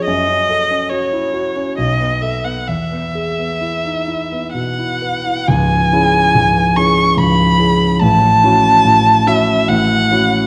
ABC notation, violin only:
X:1
M:3/4
L:1/16
Q:1/4=71
K:C#m
V:1 name="Violin"
d4 c4 d2 e f | e8 f4 | g6 c'2 b4 | a6 e2 f4 |]